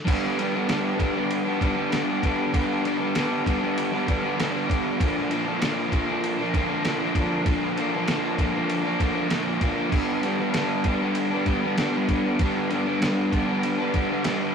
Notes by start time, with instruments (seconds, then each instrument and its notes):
0.04 overdriven electric guitar G2 D3 G3 B3, kick, crash, ride
0.09 overdriven electric guitar D4
0.36 overdriven electric guitar D3 G3 B3, ride
0.42 overdriven electric guitar D4
0.52 overdriven electric guitar B3 D4
0.57 overdriven electric guitar G3
0.67 overdriven electric guitar G2 D3 G3 B3, snare, ride
0.72 overdriven electric guitar D4
0.96 overdriven electric guitar D3 G3 B3, kick, ride
1.01 overdriven electric guitar D4
1.12 overdriven electric guitar B3 D4
1.18 overdriven electric guitar G3
1.31 ride
1.44 overdriven electric guitar B3 D4
1.49 overdriven electric guitar G3
1.60 overdriven electric guitar D3 G3 B3, kick, ride
1.65 overdriven electric guitar D4
1.74 overdriven electric guitar B3 D4
1.79 overdriven electric guitar G3
1.90 overdriven electric guitar G2 D3 G3 B3, snare, ride
1.95 overdriven electric guitar D4
2.06 overdriven electric guitar B3 D4
2.11 overdriven electric guitar G3
2.21 overdriven electric guitar D3 G3 B3, kick, ride
2.27 overdriven electric guitar D4
2.51 overdriven electric guitar G2 D3 G3 B3, kick, ride
2.56 overdriven electric guitar D4
2.82 overdriven electric guitar D3 G3 B3, ride
2.87 overdriven electric guitar D4
2.98 overdriven electric guitar B3 D4
3.03 overdriven electric guitar G3
3.14 overdriven electric guitar G2 D3 G3 B3, snare, ride
3.18 overdriven electric guitar D4
3.44 overdriven electric guitar D3 G3 B3, kick, ride
3.49 overdriven electric guitar D4
3.60 overdriven electric guitar B3 D4
3.64 overdriven electric guitar G3
3.78 ride
3.92 overdriven electric guitar B3 D4
3.96 overdriven electric guitar G3
4.06 overdriven electric guitar D3 G3 B3, kick, ride
4.11 overdriven electric guitar D4
4.22 overdriven electric guitar B3 D4
4.27 overdriven electric guitar G3
4.37 overdriven electric guitar G2 D3 G3 B3, snare, ride
4.42 overdriven electric guitar D4
4.51 overdriven electric guitar B3 D4
4.56 overdriven electric guitar G3
4.67 overdriven electric guitar D3 G3 B3, kick, ride
4.72 overdriven electric guitar D4
4.99 overdriven electric guitar A#2 D3 F3 A#3, kick, ride
5.03 overdriven electric guitar D4
5.29 overdriven electric guitar D3 F3 A#3, ride
5.35 overdriven electric guitar D4
5.44 overdriven electric guitar A#3 D4
5.48 overdriven electric guitar F3
5.59 overdriven electric guitar A#2 D3 F3 A#3, snare, ride
5.63 overdriven electric guitar D4
5.91 overdriven electric guitar D3 F3 A#3, kick, ride
5.96 overdriven electric guitar D4
6.06 overdriven electric guitar A#3 D4
6.11 overdriven electric guitar F3
6.24 ride
6.37 overdriven electric guitar A#3 D4
6.42 overdriven electric guitar F3
6.52 overdriven electric guitar D3 F3 A#3, kick, ride
6.57 overdriven electric guitar D4
6.68 overdriven electric guitar A#3 D4
6.73 overdriven electric guitar F3
6.83 overdriven electric guitar A#2 D3 F3 A#3, snare, ride
6.88 overdriven electric guitar D4
6.99 overdriven electric guitar A#3 D4
7.03 overdriven electric guitar F3
7.15 overdriven electric guitar D3 F3 A#3, kick, ride
7.20 overdriven electric guitar D4
7.45 overdriven electric guitar A#2 D3 F3 A#3, kick, ride
7.49 overdriven electric guitar D4
7.76 overdriven electric guitar D3 F3 A#3, ride
7.82 overdriven electric guitar D4
7.92 overdriven electric guitar A#3 D4
7.97 overdriven electric guitar F3
8.06 overdriven electric guitar A#2 D3 F3 A#3, snare, ride
8.11 overdriven electric guitar D4
8.37 overdriven electric guitar D3 F3 A#3, kick, ride
8.42 overdriven electric guitar D4
8.53 overdriven electric guitar A#3 D4
8.58 overdriven electric guitar F3
8.70 ride
8.82 overdriven electric guitar A#3 D4
8.87 overdriven electric guitar F3
8.99 overdriven electric guitar D3 F3 A#3, kick, ride
9.03 overdriven electric guitar D4
9.13 overdriven electric guitar A#3 D4
9.18 overdriven electric guitar F3
9.28 overdriven electric guitar A#2 D3 F3 A#3, snare, ride
9.33 overdriven electric guitar D4
9.44 overdriven electric guitar A#3 D4
9.49 overdriven electric guitar F3
9.60 overdriven electric guitar D3 F3 A#3, kick, ride
9.65 overdriven electric guitar D4
9.89 overdriven electric guitar G2 D3 G3 B3, kick, crash
9.94 overdriven electric guitar D4
10.20 overdriven electric guitar D3 G3 B3, ride
10.25 overdriven electric guitar D4
10.37 overdriven electric guitar B3 D4
10.42 overdriven electric guitar G3
10.53 overdriven electric guitar G2 D3 G3 B3, snare, ride
10.58 overdriven electric guitar D4
10.84 overdriven electric guitar D3 G3 B3, kick, ride
10.89 overdriven electric guitar D4
11.00 overdriven electric guitar G3 B3 D4
11.15 ride
11.30 overdriven electric guitar B3 D4
11.36 overdriven electric guitar G3
11.45 overdriven electric guitar D3 G3 B3, kick, ride
11.50 overdriven electric guitar D4
11.62 overdriven electric guitar B3 D4
11.67 overdriven electric guitar G3
11.76 overdriven electric guitar G2 D3 G3 B3, snare, ride
11.81 overdriven electric guitar D4
11.92 overdriven electric guitar B3 D4
11.97 overdriven electric guitar G3
12.08 overdriven electric guitar D3 G3 B3, kick, ride
12.13 overdriven electric guitar D4
12.39 overdriven electric guitar G2 D3 G3 B3, kick, ride
12.44 overdriven electric guitar D4
12.70 overdriven electric guitar D3 G3 B3, ride
12.74 overdriven electric guitar D4
12.85 overdriven electric guitar B3 D4
12.90 overdriven electric guitar G3
12.99 overdriven electric guitar G2 D3 G3 B3, snare, ride
13.04 overdriven electric guitar D4
13.31 overdriven electric guitar D3 G3 B3, kick, ride
13.36 overdriven electric guitar D4
13.46 overdriven electric guitar B3 D4
13.51 overdriven electric guitar G3
13.63 ride
13.77 overdriven electric guitar B3 D4
13.82 overdriven electric guitar G3
13.92 overdriven electric guitar D3 G3 B3, kick, ride
13.97 overdriven electric guitar D4
14.09 overdriven electric guitar B3 D4
14.13 overdriven electric guitar G3
14.24 overdriven electric guitar G2 D3 G3, snare, ride
14.28 overdriven electric guitar B3 D4
14.39 overdriven electric guitar B3 D4
14.45 overdriven electric guitar G3